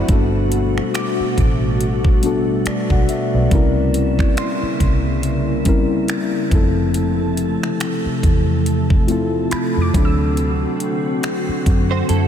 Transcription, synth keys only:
0.00 0.11 F#3 medium
0.00 0.10 C4 medium
0.00 0.10 D4 medium
0.00 0.10 E4 medium
0.00 0.10 F#4 medium
0.00 0.11 A4 medium
0.00 0.32 C5 medium
0.00 0.11 D5 medium
0.00 0.11 E5 medium
0.00 0.10 F#5 medium
0.00 0.10 B5 medium
0.08 1.41 G3 medium
0.08 0.16 A#3 medium
0.08 1.42 D4 medium
0.08 1.42 F#4 medium
0.12 1.44 B3 medium
0.12 1.43 A4 medium
2.22 3.23 G3 medium
2.22 3.24 B3 medium
2.22 3.24 D4 medium
2.22 3.25 F#4 medium
2.26 3.26 A4 loud
2.67 2.90 B4 medium
2.67 2.90 D5 medium
2.91 3.09 D5 medium
2.91 3.08 F#5 medium
3.10 3.33 E5 medium
3.34 3.75 B4 medium
3.34 3.75 D5 medium
3.50 4.83 G3 medium
3.50 4.84 C4 medium
3.50 4.84 C#4 medium
3.50 4.85 E4 medium
3.55 4.85 A#4 medium
5.64 6.51 G3 medium
5.64 6.51 C4 medium
5.64 6.52 C#4 medium
5.64 6.52 E4 medium
5.69 6.53 A#4 medium
6.50 7.89 F3 medium
6.50 7.90 A3 medium
6.50 7.91 C4 medium
6.50 7.91 E4 medium
6.55 7.92 A4 loud
9.07 9.93 A3 medium
9.07 9.94 C4 medium
9.07 9.95 E4 medium
9.07 9.94 F4 medium
9.12 9.96 A4 medium
9.93 11.32 F#3 medium
9.93 11.33 A3 medium
9.93 11.33 C4 medium
9.93 11.34 D4 medium
9.98 11.35 A4 loud

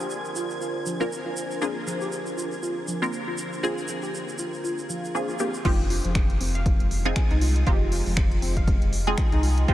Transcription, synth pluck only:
0.36 0.43 F4 loud
0.61 0.68 F4 loud
0.86 0.93 F3 medium
1.26 1.29 F4 medium
1.62 1.69 F4 loud
1.87 1.94 F3 medium
2.01 2.09 G4 loud
2.37 2.44 F4 loud
2.63 2.70 F4 loud
2.88 2.95 F3 medium
3.27 3.31 F4 medium
3.63 3.70 F4 loud
3.88 3.96 F3 medium
4.03 4.11 G4 medium
4.39 4.46 F4 loud
4.64 4.71 F4 loud
4.89 4.96 F3 medium
5.29 5.32 F4 medium
5.65 5.69 F4 loud
5.90 6.01 F4 medium
6.05 6.10 F3 medium
6.41 6.48 C4 medium
6.55 6.60 F5 loud
7.31 7.39 D#4 loud
7.41 7.49 F4 medium
7.67 7.71 F4 loud
7.92 8.02 F4 medium
8.06 8.12 F3 medium
8.42 8.49 C4 medium
8.57 8.62 F5 loud
9.32 9.40 D#4 loud
9.43 9.50 F4 medium
9.68 9.73 F4 loud

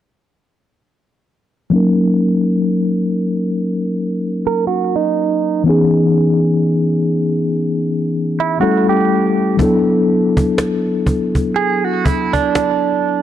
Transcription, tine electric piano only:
1.70 5.61 F#3 medium
1.70 5.61 A#3 medium
1.70 5.62 C#4 medium
1.74 5.63 D#4 medium
1.74 5.63 A#4 medium
5.64 8.56 E3 medium
5.64 8.56 B3 medium
5.64 8.57 C#4 medium
5.68 8.58 D#4 medium
5.68 8.59 G#4 medium
8.60 9.59 G3 medium
8.60 9.59 A3 medium
8.60 9.59 C#4 medium
8.60 9.60 E4 medium
8.60 9.60 A4 medium
9.57 13.22 F#3 medium
9.57 13.22 B3 medium
9.57 13.22 D4 medium
9.61 13.22 E4 medium
9.61 13.22 A4 medium

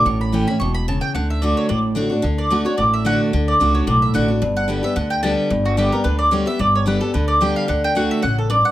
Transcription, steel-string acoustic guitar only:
0.06 0.58 A2 medium
0.32 0.47 E3 medium
0.32 0.47 A3 medium
0.32 0.47 C#4 medium
0.32 0.47 E4 medium
0.48 0.61 C#4 medium
0.48 0.60 E4 medium
0.61 0.87 B2 medium
0.88 1.14 C#3 medium
1.15 1.41 D3 medium
1.42 1.68 D3 medium
1.42 1.69 A3 medium
1.42 1.69 D4 medium
1.42 1.69 F#4 medium
1.69 2.21 A2 medium
1.95 2.10 D3 medium
1.95 2.10 A3 medium
1.95 2.11 D4 medium
1.95 2.08 F#4 medium
2.10 2.24 D4 soft
2.10 2.23 F#4 medium
2.22 2.49 D3 loud
2.50 2.65 D3 medium
2.50 2.65 A3 medium
2.50 2.65 D4 medium
2.50 2.64 F#4 medium
2.65 2.78 D4 soft
2.65 2.77 F#4 medium
2.78 3.30 A2 medium
3.05 3.31 D3 medium
3.05 3.31 A3 medium
3.05 3.32 D4 medium
3.05 3.32 F#4 loud
3.33 3.59 D3 medium
3.60 3.86 D3 medium
3.60 3.86 A3 medium
3.60 3.87 D4 medium
3.60 3.87 F#4 medium
3.87 4.39 A2 medium
4.14 4.28 D3 medium
4.14 4.29 A3 medium
4.14 4.29 D4 loud
4.14 4.27 F#4 loud
4.28 4.42 D4 soft
4.28 4.41 F#4 medium
4.42 4.94 G2 medium
4.68 4.82 D3 medium
4.68 4.83 G3 medium
4.68 4.83 B3 medium
4.68 4.81 G4 medium
4.83 4.96 B3 medium
4.83 4.95 G4 medium
4.96 5.21 D3 medium
5.23 5.49 D3 medium
5.23 5.49 G3 medium
5.23 5.50 B3 loud
5.23 5.50 G4 medium
5.50 6.03 G2 medium
5.77 5.92 D3 medium
5.77 5.92 G3 medium
5.77 5.92 B3 medium
5.77 5.91 G4 medium
5.92 6.05 B3 medium
5.92 6.05 G4 medium
6.04 6.30 D3 medium
6.31 6.46 D3 medium
6.31 6.46 G3 medium
6.31 6.46 B3 loud
6.31 6.45 G4 loud
6.46 6.59 B3 soft
6.46 6.59 G4 medium
6.59 7.11 G2 medium
6.86 7.00 D3 medium
6.86 7.01 G3 medium
6.86 7.01 B3 medium
6.86 6.99 G4 medium
7.00 7.14 B3 medium
7.00 7.13 G4 medium
7.14 7.39 D3 medium
7.41 7.67 D3 medium
7.41 7.67 G3 medium
7.41 7.67 B3 medium
7.41 7.68 G4 medium
7.68 7.94 D3 loud
7.95 8.21 D3 medium
7.95 8.22 A3 medium
7.95 8.22 D4 medium
7.95 8.22 F#4 medium
8.22 8.49 C#3 medium
8.50 8.71 G2 medium

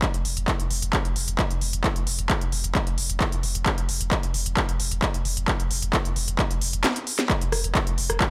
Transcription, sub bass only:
0.14 0.24 F1 medium
0.25 0.36 F1 medium
0.37 0.48 F1 medium
0.60 0.70 F1 medium
0.70 0.82 F1 loud
0.82 0.93 F1 medium
1.05 1.15 F1 medium
1.16 1.27 F1 loud
1.28 1.38 F1 medium
1.50 1.61 F1 medium
1.61 1.73 F1 loud
1.73 1.84 F1 medium
1.96 2.06 F1 medium
2.07 2.18 F1 medium
2.19 2.29 F1 medium
2.41 2.52 F1 medium
2.52 2.64 F1 loud
2.64 2.75 F1 medium
2.87 2.97 F1 medium
2.98 3.09 F1 loud
3.10 3.20 F1 medium
3.32 3.43 F1 medium
3.43 3.54 F1 loud
3.55 3.66 F1 medium
3.78 3.88 F1 medium
3.89 4.00 F1 medium
4.01 4.11 F1 medium
4.23 4.34 F1 medium
4.34 4.45 F1 loud
4.46 4.57 F1 medium
4.69 4.79 F1 medium
4.80 4.91 F1 loud
4.92 5.02 F1 medium
5.14 5.24 F1 medium
5.25 5.36 F1 loud
5.37 5.48 F1 medium
5.60 5.70 F1 medium
5.71 5.82 F1 loud
5.82 5.93 F1 medium
6.05 6.15 F1 medium
6.16 6.27 F1 loud
6.28 6.39 F1 medium
6.50 6.61 F1 medium
6.61 6.73 F1 loud
6.73 6.84 F1 medium
7.41 7.52 F1 medium
7.52 7.64 F1 loud
7.64 7.75 F1 medium
7.87 7.97 F1 medium
7.98 8.09 F1 loud
8.10 8.20 F1 medium

